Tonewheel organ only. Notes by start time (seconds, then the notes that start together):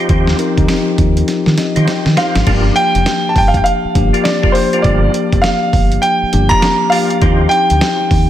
0.09 D#4 F4 G4 C5
1.76 D#4 F4 G4 C5
2.17 D#4 F4 G4 C5
2.47 D4 F4 G4 A#4
4.13 D4 F4 G4 A#4
4.43 D4 F4 G4 A#4
4.73 D4 F4 G4 A#4
4.84 D4 F4 G4 A#4
6.51 D4 F4 G4 A#4
6.92 D4 F4 G4 A#4
7.21 D#4 F4 G4 C5